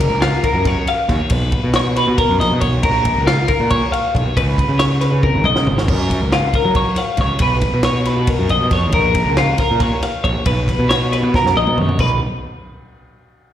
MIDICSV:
0, 0, Header, 1, 4, 480
1, 0, Start_track
1, 0, Tempo, 435730
1, 1449, Time_signature, 7, 3, 24, 8
1, 14905, End_track
2, 0, Start_track
2, 0, Title_t, "Clean electric guitar"
2, 0, Program_c, 0, 27
2, 0, Note_on_c, 0, 70, 92
2, 237, Note_off_c, 0, 70, 0
2, 241, Note_on_c, 0, 65, 96
2, 484, Note_off_c, 0, 65, 0
2, 484, Note_on_c, 0, 70, 80
2, 742, Note_off_c, 0, 70, 0
2, 742, Note_on_c, 0, 73, 87
2, 975, Note_off_c, 0, 73, 0
2, 975, Note_on_c, 0, 77, 79
2, 1222, Note_off_c, 0, 77, 0
2, 1222, Note_on_c, 0, 73, 75
2, 1453, Note_off_c, 0, 73, 0
2, 1453, Note_on_c, 0, 71, 90
2, 1932, Note_off_c, 0, 71, 0
2, 1937, Note_on_c, 0, 73, 95
2, 2169, Note_off_c, 0, 73, 0
2, 2174, Note_on_c, 0, 71, 79
2, 2396, Note_off_c, 0, 71, 0
2, 2400, Note_on_c, 0, 70, 85
2, 2641, Note_off_c, 0, 70, 0
2, 2645, Note_on_c, 0, 75, 84
2, 2869, Note_off_c, 0, 75, 0
2, 2874, Note_on_c, 0, 73, 76
2, 3120, Note_on_c, 0, 70, 91
2, 3122, Note_off_c, 0, 73, 0
2, 3604, Note_on_c, 0, 65, 101
2, 3606, Note_off_c, 0, 70, 0
2, 3836, Note_on_c, 0, 70, 77
2, 3847, Note_off_c, 0, 65, 0
2, 4083, Note_on_c, 0, 73, 91
2, 4084, Note_off_c, 0, 70, 0
2, 4317, Note_off_c, 0, 73, 0
2, 4322, Note_on_c, 0, 77, 88
2, 4569, Note_off_c, 0, 77, 0
2, 4569, Note_on_c, 0, 73, 74
2, 4810, Note_off_c, 0, 73, 0
2, 4815, Note_on_c, 0, 71, 93
2, 5280, Note_on_c, 0, 73, 94
2, 5292, Note_off_c, 0, 71, 0
2, 5518, Note_on_c, 0, 71, 78
2, 5525, Note_off_c, 0, 73, 0
2, 5761, Note_off_c, 0, 71, 0
2, 5765, Note_on_c, 0, 70, 85
2, 6007, Note_off_c, 0, 70, 0
2, 6008, Note_on_c, 0, 75, 81
2, 6255, Note_off_c, 0, 75, 0
2, 6255, Note_on_c, 0, 73, 76
2, 6495, Note_off_c, 0, 73, 0
2, 6495, Note_on_c, 0, 70, 88
2, 6971, Note_off_c, 0, 70, 0
2, 6973, Note_on_c, 0, 65, 93
2, 7210, Note_off_c, 0, 65, 0
2, 7219, Note_on_c, 0, 70, 80
2, 7447, Note_off_c, 0, 70, 0
2, 7451, Note_on_c, 0, 73, 81
2, 7684, Note_off_c, 0, 73, 0
2, 7684, Note_on_c, 0, 77, 81
2, 7925, Note_off_c, 0, 77, 0
2, 7942, Note_on_c, 0, 73, 75
2, 8173, Note_on_c, 0, 71, 91
2, 8174, Note_off_c, 0, 73, 0
2, 8643, Note_on_c, 0, 73, 103
2, 8649, Note_off_c, 0, 71, 0
2, 8888, Note_off_c, 0, 73, 0
2, 8888, Note_on_c, 0, 71, 77
2, 9132, Note_off_c, 0, 71, 0
2, 9132, Note_on_c, 0, 70, 88
2, 9364, Note_off_c, 0, 70, 0
2, 9369, Note_on_c, 0, 75, 82
2, 9606, Note_off_c, 0, 75, 0
2, 9614, Note_on_c, 0, 73, 76
2, 9848, Note_on_c, 0, 70, 101
2, 9849, Note_off_c, 0, 73, 0
2, 10325, Note_off_c, 0, 70, 0
2, 10333, Note_on_c, 0, 65, 98
2, 10567, Note_off_c, 0, 65, 0
2, 10572, Note_on_c, 0, 70, 83
2, 10812, Note_off_c, 0, 70, 0
2, 10812, Note_on_c, 0, 73, 86
2, 11047, Note_off_c, 0, 73, 0
2, 11047, Note_on_c, 0, 77, 80
2, 11276, Note_off_c, 0, 77, 0
2, 11280, Note_on_c, 0, 73, 73
2, 11521, Note_off_c, 0, 73, 0
2, 11526, Note_on_c, 0, 71, 88
2, 12000, Note_on_c, 0, 73, 88
2, 12003, Note_off_c, 0, 71, 0
2, 12241, Note_off_c, 0, 73, 0
2, 12254, Note_on_c, 0, 71, 81
2, 12487, Note_off_c, 0, 71, 0
2, 12509, Note_on_c, 0, 70, 83
2, 12735, Note_off_c, 0, 70, 0
2, 12745, Note_on_c, 0, 75, 84
2, 12985, Note_off_c, 0, 75, 0
2, 12985, Note_on_c, 0, 73, 71
2, 13213, Note_off_c, 0, 73, 0
2, 13223, Note_on_c, 0, 71, 85
2, 13436, Note_off_c, 0, 71, 0
2, 14905, End_track
3, 0, Start_track
3, 0, Title_t, "Picked electric bass"
3, 0, Program_c, 1, 34
3, 106, Note_on_c, 1, 37, 84
3, 342, Note_off_c, 1, 37, 0
3, 596, Note_on_c, 1, 42, 91
3, 828, Note_off_c, 1, 42, 0
3, 1197, Note_on_c, 1, 39, 97
3, 1316, Note_off_c, 1, 39, 0
3, 1440, Note_on_c, 1, 35, 107
3, 1671, Note_off_c, 1, 35, 0
3, 1802, Note_on_c, 1, 47, 97
3, 2260, Note_off_c, 1, 47, 0
3, 2287, Note_on_c, 1, 47, 92
3, 2402, Note_off_c, 1, 47, 0
3, 2526, Note_on_c, 1, 42, 89
3, 2635, Note_off_c, 1, 42, 0
3, 2642, Note_on_c, 1, 34, 102
3, 2759, Note_off_c, 1, 34, 0
3, 2772, Note_on_c, 1, 47, 92
3, 2878, Note_off_c, 1, 47, 0
3, 2884, Note_on_c, 1, 35, 84
3, 3127, Note_off_c, 1, 35, 0
3, 3127, Note_on_c, 1, 34, 109
3, 3469, Note_off_c, 1, 34, 0
3, 3493, Note_on_c, 1, 37, 83
3, 3719, Note_off_c, 1, 37, 0
3, 3963, Note_on_c, 1, 46, 85
3, 4193, Note_off_c, 1, 46, 0
3, 4571, Note_on_c, 1, 35, 97
3, 4684, Note_off_c, 1, 35, 0
3, 4813, Note_on_c, 1, 37, 109
3, 5038, Note_off_c, 1, 37, 0
3, 5163, Note_on_c, 1, 49, 98
3, 5620, Note_off_c, 1, 49, 0
3, 5642, Note_on_c, 1, 49, 89
3, 5759, Note_off_c, 1, 49, 0
3, 5888, Note_on_c, 1, 32, 91
3, 6002, Note_off_c, 1, 32, 0
3, 6010, Note_on_c, 1, 35, 97
3, 6123, Note_off_c, 1, 35, 0
3, 6133, Note_on_c, 1, 49, 93
3, 6245, Note_off_c, 1, 49, 0
3, 6252, Note_on_c, 1, 32, 84
3, 6482, Note_on_c, 1, 42, 102
3, 6498, Note_off_c, 1, 32, 0
3, 6825, Note_off_c, 1, 42, 0
3, 6852, Note_on_c, 1, 37, 88
3, 7077, Note_off_c, 1, 37, 0
3, 7326, Note_on_c, 1, 54, 91
3, 7553, Note_off_c, 1, 54, 0
3, 7915, Note_on_c, 1, 37, 96
3, 8034, Note_off_c, 1, 37, 0
3, 8151, Note_on_c, 1, 35, 104
3, 8384, Note_off_c, 1, 35, 0
3, 8524, Note_on_c, 1, 47, 95
3, 8977, Note_off_c, 1, 47, 0
3, 9006, Note_on_c, 1, 47, 85
3, 9119, Note_off_c, 1, 47, 0
3, 9244, Note_on_c, 1, 42, 102
3, 9349, Note_off_c, 1, 42, 0
3, 9356, Note_on_c, 1, 34, 104
3, 9473, Note_off_c, 1, 34, 0
3, 9486, Note_on_c, 1, 47, 90
3, 9589, Note_off_c, 1, 47, 0
3, 9595, Note_on_c, 1, 41, 93
3, 9839, Note_off_c, 1, 41, 0
3, 9839, Note_on_c, 1, 34, 97
3, 10181, Note_off_c, 1, 34, 0
3, 10200, Note_on_c, 1, 37, 82
3, 10428, Note_off_c, 1, 37, 0
3, 10695, Note_on_c, 1, 46, 90
3, 10916, Note_off_c, 1, 46, 0
3, 11286, Note_on_c, 1, 34, 96
3, 11397, Note_off_c, 1, 34, 0
3, 11522, Note_on_c, 1, 35, 113
3, 11748, Note_off_c, 1, 35, 0
3, 11885, Note_on_c, 1, 47, 94
3, 12336, Note_off_c, 1, 47, 0
3, 12368, Note_on_c, 1, 47, 90
3, 12478, Note_off_c, 1, 47, 0
3, 12600, Note_on_c, 1, 42, 94
3, 12714, Note_off_c, 1, 42, 0
3, 12730, Note_on_c, 1, 34, 98
3, 12839, Note_off_c, 1, 34, 0
3, 12853, Note_on_c, 1, 47, 90
3, 12961, Note_off_c, 1, 47, 0
3, 12971, Note_on_c, 1, 42, 85
3, 13193, Note_off_c, 1, 42, 0
3, 13208, Note_on_c, 1, 35, 95
3, 13428, Note_off_c, 1, 35, 0
3, 14905, End_track
4, 0, Start_track
4, 0, Title_t, "Drums"
4, 0, Note_on_c, 9, 36, 92
4, 5, Note_on_c, 9, 51, 96
4, 6, Note_on_c, 9, 38, 39
4, 110, Note_off_c, 9, 36, 0
4, 115, Note_off_c, 9, 51, 0
4, 116, Note_off_c, 9, 38, 0
4, 243, Note_on_c, 9, 51, 112
4, 244, Note_on_c, 9, 38, 118
4, 353, Note_off_c, 9, 51, 0
4, 354, Note_off_c, 9, 38, 0
4, 480, Note_on_c, 9, 36, 77
4, 480, Note_on_c, 9, 51, 88
4, 590, Note_off_c, 9, 36, 0
4, 590, Note_off_c, 9, 51, 0
4, 718, Note_on_c, 9, 51, 109
4, 719, Note_on_c, 9, 38, 38
4, 721, Note_on_c, 9, 36, 107
4, 828, Note_off_c, 9, 51, 0
4, 829, Note_off_c, 9, 38, 0
4, 831, Note_off_c, 9, 36, 0
4, 962, Note_on_c, 9, 51, 83
4, 1072, Note_off_c, 9, 51, 0
4, 1203, Note_on_c, 9, 36, 90
4, 1203, Note_on_c, 9, 51, 85
4, 1204, Note_on_c, 9, 38, 40
4, 1313, Note_off_c, 9, 36, 0
4, 1313, Note_off_c, 9, 51, 0
4, 1314, Note_off_c, 9, 38, 0
4, 1429, Note_on_c, 9, 51, 115
4, 1440, Note_on_c, 9, 36, 114
4, 1539, Note_off_c, 9, 51, 0
4, 1550, Note_off_c, 9, 36, 0
4, 1674, Note_on_c, 9, 51, 90
4, 1678, Note_on_c, 9, 36, 92
4, 1784, Note_off_c, 9, 51, 0
4, 1788, Note_off_c, 9, 36, 0
4, 1912, Note_on_c, 9, 51, 98
4, 1913, Note_on_c, 9, 38, 120
4, 2022, Note_off_c, 9, 51, 0
4, 2023, Note_off_c, 9, 38, 0
4, 2163, Note_on_c, 9, 51, 83
4, 2164, Note_on_c, 9, 38, 41
4, 2273, Note_off_c, 9, 51, 0
4, 2274, Note_off_c, 9, 38, 0
4, 2402, Note_on_c, 9, 36, 114
4, 2402, Note_on_c, 9, 51, 106
4, 2512, Note_off_c, 9, 36, 0
4, 2513, Note_off_c, 9, 51, 0
4, 2655, Note_on_c, 9, 51, 82
4, 2656, Note_on_c, 9, 38, 36
4, 2765, Note_off_c, 9, 51, 0
4, 2766, Note_off_c, 9, 38, 0
4, 2879, Note_on_c, 9, 51, 88
4, 2883, Note_on_c, 9, 36, 83
4, 2989, Note_off_c, 9, 51, 0
4, 2993, Note_off_c, 9, 36, 0
4, 3119, Note_on_c, 9, 51, 118
4, 3124, Note_on_c, 9, 36, 126
4, 3229, Note_off_c, 9, 51, 0
4, 3234, Note_off_c, 9, 36, 0
4, 3360, Note_on_c, 9, 51, 90
4, 3364, Note_on_c, 9, 36, 92
4, 3470, Note_off_c, 9, 51, 0
4, 3475, Note_off_c, 9, 36, 0
4, 3608, Note_on_c, 9, 51, 107
4, 3609, Note_on_c, 9, 38, 118
4, 3718, Note_off_c, 9, 51, 0
4, 3719, Note_off_c, 9, 38, 0
4, 3835, Note_on_c, 9, 51, 89
4, 3843, Note_on_c, 9, 36, 78
4, 3945, Note_off_c, 9, 51, 0
4, 3953, Note_off_c, 9, 36, 0
4, 4080, Note_on_c, 9, 51, 118
4, 4086, Note_on_c, 9, 36, 107
4, 4191, Note_off_c, 9, 51, 0
4, 4196, Note_off_c, 9, 36, 0
4, 4334, Note_on_c, 9, 51, 82
4, 4444, Note_off_c, 9, 51, 0
4, 4571, Note_on_c, 9, 36, 88
4, 4583, Note_on_c, 9, 51, 91
4, 4681, Note_off_c, 9, 36, 0
4, 4694, Note_off_c, 9, 51, 0
4, 4811, Note_on_c, 9, 36, 123
4, 4815, Note_on_c, 9, 51, 113
4, 4922, Note_off_c, 9, 36, 0
4, 4925, Note_off_c, 9, 51, 0
4, 5048, Note_on_c, 9, 36, 89
4, 5055, Note_on_c, 9, 51, 89
4, 5158, Note_off_c, 9, 36, 0
4, 5165, Note_off_c, 9, 51, 0
4, 5282, Note_on_c, 9, 51, 112
4, 5283, Note_on_c, 9, 38, 112
4, 5392, Note_off_c, 9, 51, 0
4, 5393, Note_off_c, 9, 38, 0
4, 5522, Note_on_c, 9, 51, 79
4, 5523, Note_on_c, 9, 38, 39
4, 5632, Note_off_c, 9, 51, 0
4, 5633, Note_off_c, 9, 38, 0
4, 5763, Note_on_c, 9, 36, 120
4, 5766, Note_on_c, 9, 48, 71
4, 5874, Note_off_c, 9, 36, 0
4, 5876, Note_off_c, 9, 48, 0
4, 5994, Note_on_c, 9, 47, 82
4, 6105, Note_off_c, 9, 47, 0
4, 6122, Note_on_c, 9, 38, 87
4, 6232, Note_off_c, 9, 38, 0
4, 6246, Note_on_c, 9, 43, 106
4, 6357, Note_off_c, 9, 43, 0
4, 6368, Note_on_c, 9, 38, 90
4, 6478, Note_off_c, 9, 38, 0
4, 6481, Note_on_c, 9, 36, 122
4, 6481, Note_on_c, 9, 49, 112
4, 6591, Note_off_c, 9, 36, 0
4, 6591, Note_off_c, 9, 49, 0
4, 6722, Note_on_c, 9, 36, 91
4, 6729, Note_on_c, 9, 51, 88
4, 6730, Note_on_c, 9, 38, 39
4, 6832, Note_off_c, 9, 36, 0
4, 6839, Note_off_c, 9, 51, 0
4, 6840, Note_off_c, 9, 38, 0
4, 6966, Note_on_c, 9, 51, 98
4, 6967, Note_on_c, 9, 38, 114
4, 7076, Note_off_c, 9, 51, 0
4, 7077, Note_off_c, 9, 38, 0
4, 7199, Note_on_c, 9, 36, 80
4, 7199, Note_on_c, 9, 51, 84
4, 7309, Note_off_c, 9, 36, 0
4, 7309, Note_off_c, 9, 51, 0
4, 7434, Note_on_c, 9, 51, 102
4, 7437, Note_on_c, 9, 36, 113
4, 7544, Note_off_c, 9, 51, 0
4, 7547, Note_off_c, 9, 36, 0
4, 7669, Note_on_c, 9, 51, 80
4, 7670, Note_on_c, 9, 38, 38
4, 7779, Note_off_c, 9, 51, 0
4, 7780, Note_off_c, 9, 38, 0
4, 7899, Note_on_c, 9, 51, 88
4, 7900, Note_on_c, 9, 38, 37
4, 7913, Note_on_c, 9, 36, 90
4, 8009, Note_off_c, 9, 51, 0
4, 8010, Note_off_c, 9, 38, 0
4, 8023, Note_off_c, 9, 36, 0
4, 8139, Note_on_c, 9, 51, 119
4, 8153, Note_on_c, 9, 36, 125
4, 8250, Note_off_c, 9, 51, 0
4, 8263, Note_off_c, 9, 36, 0
4, 8388, Note_on_c, 9, 51, 93
4, 8389, Note_on_c, 9, 38, 39
4, 8394, Note_on_c, 9, 36, 94
4, 8498, Note_off_c, 9, 51, 0
4, 8499, Note_off_c, 9, 38, 0
4, 8504, Note_off_c, 9, 36, 0
4, 8625, Note_on_c, 9, 51, 111
4, 8626, Note_on_c, 9, 38, 110
4, 8735, Note_off_c, 9, 51, 0
4, 8736, Note_off_c, 9, 38, 0
4, 8873, Note_on_c, 9, 51, 89
4, 8874, Note_on_c, 9, 38, 37
4, 8983, Note_off_c, 9, 51, 0
4, 8984, Note_off_c, 9, 38, 0
4, 9113, Note_on_c, 9, 51, 111
4, 9117, Note_on_c, 9, 36, 112
4, 9223, Note_off_c, 9, 51, 0
4, 9227, Note_off_c, 9, 36, 0
4, 9355, Note_on_c, 9, 51, 81
4, 9465, Note_off_c, 9, 51, 0
4, 9594, Note_on_c, 9, 51, 87
4, 9595, Note_on_c, 9, 38, 36
4, 9596, Note_on_c, 9, 36, 91
4, 9704, Note_off_c, 9, 51, 0
4, 9705, Note_off_c, 9, 38, 0
4, 9707, Note_off_c, 9, 36, 0
4, 9831, Note_on_c, 9, 51, 109
4, 9838, Note_on_c, 9, 36, 127
4, 9941, Note_off_c, 9, 51, 0
4, 9948, Note_off_c, 9, 36, 0
4, 10076, Note_on_c, 9, 51, 83
4, 10077, Note_on_c, 9, 38, 40
4, 10081, Note_on_c, 9, 36, 97
4, 10186, Note_off_c, 9, 51, 0
4, 10187, Note_off_c, 9, 38, 0
4, 10191, Note_off_c, 9, 36, 0
4, 10321, Note_on_c, 9, 51, 98
4, 10322, Note_on_c, 9, 38, 116
4, 10431, Note_off_c, 9, 51, 0
4, 10432, Note_off_c, 9, 38, 0
4, 10553, Note_on_c, 9, 51, 79
4, 10555, Note_on_c, 9, 38, 38
4, 10560, Note_on_c, 9, 36, 80
4, 10664, Note_off_c, 9, 51, 0
4, 10665, Note_off_c, 9, 38, 0
4, 10670, Note_off_c, 9, 36, 0
4, 10796, Note_on_c, 9, 51, 111
4, 10797, Note_on_c, 9, 38, 37
4, 10800, Note_on_c, 9, 36, 110
4, 10906, Note_off_c, 9, 51, 0
4, 10907, Note_off_c, 9, 38, 0
4, 10910, Note_off_c, 9, 36, 0
4, 11044, Note_on_c, 9, 51, 75
4, 11045, Note_on_c, 9, 38, 34
4, 11154, Note_off_c, 9, 51, 0
4, 11155, Note_off_c, 9, 38, 0
4, 11283, Note_on_c, 9, 36, 85
4, 11285, Note_on_c, 9, 51, 82
4, 11393, Note_off_c, 9, 36, 0
4, 11395, Note_off_c, 9, 51, 0
4, 11519, Note_on_c, 9, 51, 116
4, 11523, Note_on_c, 9, 36, 119
4, 11629, Note_off_c, 9, 51, 0
4, 11633, Note_off_c, 9, 36, 0
4, 11764, Note_on_c, 9, 36, 84
4, 11772, Note_on_c, 9, 51, 84
4, 11773, Note_on_c, 9, 38, 39
4, 11875, Note_off_c, 9, 36, 0
4, 11882, Note_off_c, 9, 51, 0
4, 11883, Note_off_c, 9, 38, 0
4, 12014, Note_on_c, 9, 51, 104
4, 12015, Note_on_c, 9, 38, 119
4, 12124, Note_off_c, 9, 51, 0
4, 12125, Note_off_c, 9, 38, 0
4, 12259, Note_on_c, 9, 51, 86
4, 12260, Note_on_c, 9, 38, 40
4, 12369, Note_off_c, 9, 51, 0
4, 12370, Note_off_c, 9, 38, 0
4, 12495, Note_on_c, 9, 36, 115
4, 12503, Note_on_c, 9, 38, 70
4, 12605, Note_off_c, 9, 36, 0
4, 12613, Note_off_c, 9, 38, 0
4, 12630, Note_on_c, 9, 38, 68
4, 12740, Note_off_c, 9, 38, 0
4, 12856, Note_on_c, 9, 47, 82
4, 12966, Note_off_c, 9, 47, 0
4, 12976, Note_on_c, 9, 45, 109
4, 13086, Note_off_c, 9, 45, 0
4, 13096, Note_on_c, 9, 43, 92
4, 13206, Note_on_c, 9, 49, 94
4, 13207, Note_off_c, 9, 43, 0
4, 13209, Note_on_c, 9, 36, 111
4, 13316, Note_off_c, 9, 49, 0
4, 13319, Note_off_c, 9, 36, 0
4, 14905, End_track
0, 0, End_of_file